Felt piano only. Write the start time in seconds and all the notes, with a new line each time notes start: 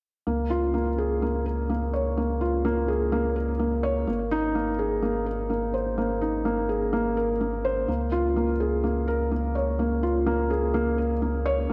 0.27 A#3
0.50 F4
0.74 A#3
0.98 G#4
1.22 A#3
1.46 A#4
1.70 A#3
1.93 C#5
2.17 A#3
2.41 F4
2.65 A#3
2.88 G#4
3.12 A#3
3.36 A#4
3.59 A#3
3.83 C#5
4.07 A#3
4.31 D#4
4.55 A#3
4.79 G#4
5.02 A#3
5.26 A#4
5.50 A#3
5.74 C5
5.98 A#3
6.21 D#4
6.45 A#3
6.69 G#4
6.93 A#3
7.17 A#4
7.41 A#3
7.65 C5
7.88 A#3
8.12 F4
8.36 A#3
8.60 G#4
8.84 A#3
9.08 A#4
9.31 A#3
9.55 C#5
9.79 A#3
10.03 F4
10.26 A#3
10.50 G#4
10.74 A#3
10.98 A#4
11.22 A#3
11.46 C#5
11.70 A#3